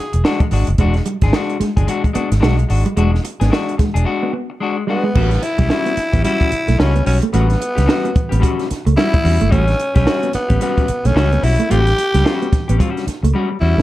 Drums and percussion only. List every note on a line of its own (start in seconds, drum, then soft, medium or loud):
0.13 closed hi-hat medium
0.25 snare loud
0.40 kick loud
0.40 closed hi-hat soft
0.51 snare soft
0.51 open hi-hat medium
0.67 closed hi-hat medium
0.78 kick loud
0.78 closed hi-hat medium
0.94 snare soft
0.94 closed hi-hat soft
1.06 closed hi-hat medium
1.22 kick loud
1.22 snare soft
1.22 closed hi-hat soft
1.33 snare loud
1.50 closed hi-hat soft
1.61 snare soft
1.61 closed hi-hat medium
1.77 kick loud
1.77 closed hi-hat medium
1.88 closed hi-hat medium
2.04 kick medium
2.04 closed hi-hat soft
2.15 closed hi-hat medium
2.32 snare soft
2.32 closed hi-hat medium
2.43 snare loud
2.59 closed hi-hat soft
2.70 open hi-hat medium
2.86 closed hi-hat medium
2.97 closed hi-hat medium
3.15 snare soft
3.25 closed hi-hat medium
3.41 snare soft
3.41 closed hi-hat medium
3.53 snare loud
3.69 closed hi-hat soft
3.79 kick medium
3.79 snare soft
3.79 closed hi-hat medium
3.96 closed hi-hat medium
5.15 kick medium
5.15 crash medium
5.31 snare soft
5.31 closed hi-hat soft
5.43 closed hi-hat medium
5.58 kick medium
5.58 snare soft
5.58 closed hi-hat medium
5.70 snare loud
5.86 closed hi-hat soft
5.97 snare soft
5.97 closed hi-hat medium
6.13 kick medium
6.13 closed hi-hat medium
6.24 closed hi-hat medium
6.41 kick medium
6.41 closed hi-hat soft
6.52 closed hi-hat medium
6.68 snare soft
6.68 closed hi-hat soft
6.80 snare loud
6.96 closed hi-hat soft
7.06 open hi-hat medium
7.22 closed hi-hat medium
7.34 closed hi-hat medium
7.50 snare soft
7.50 closed hi-hat soft
7.62 closed hi-hat medium
7.78 snare soft
7.78 closed hi-hat medium
7.89 snare loud
8.05 closed hi-hat soft
8.16 kick loud
8.16 closed hi-hat medium
8.32 closed hi-hat medium
8.43 kick loud
8.43 closed hi-hat loud
8.60 snare soft
8.60 closed hi-hat soft
8.71 snare soft
8.71 closed hi-hat medium
8.87 closed hi-hat soft
8.98 snare loud
9.14 kick loud
9.14 closed hi-hat soft
9.25 snare soft
9.25 open hi-hat medium
9.41 closed hi-hat medium
9.52 kick loud
9.52 closed hi-hat medium
9.68 snare soft
9.68 closed hi-hat soft
9.80 closed hi-hat medium
9.95 kick loud
9.95 snare soft
9.95 closed hi-hat medium
10.07 snare loud
10.23 closed hi-hat soft
10.33 snare soft
10.33 closed hi-hat medium
10.50 kick medium
10.50 closed hi-hat medium
10.61 closed hi-hat medium
10.78 kick medium
10.78 closed hi-hat soft
10.88 closed hi-hat medium
11.05 snare soft
11.05 closed hi-hat soft
11.17 snare loud
11.32 closed hi-hat soft
11.43 open hi-hat medium
11.60 closed hi-hat medium
11.71 closed hi-hat medium
11.87 snare soft
11.87 closed hi-hat soft
11.98 closed hi-hat medium
12.14 snare soft
12.14 closed hi-hat medium
12.26 snare loud
12.42 closed hi-hat soft
12.53 kick loud
12.53 snare soft
12.53 closed hi-hat medium
12.69 closed hi-hat medium
12.80 kick loud
12.80 closed hi-hat medium
12.97 snare soft
12.97 closed hi-hat soft
13.08 snare soft
13.08 closed hi-hat medium
13.24 closed hi-hat medium